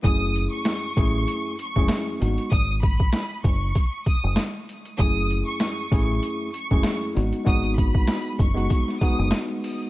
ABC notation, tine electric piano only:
X:1
M:4/4
L:1/16
Q:"Swing 16ths" 1/4=97
K:F#dor
V:1 name="Tine electric piano"
[F,,A,CEG]6 [F,,A,CEG]4 z [F,,A,CEG]3 [G,B,DF]2 | z16 | [F,,A,CEG]6 [F,,A,CEG]4 z [F,,A,CEG]3 [G,B,DF]2 | [G,B,DF]6 z [G,B,DF]3 [G,B,DF]6 |]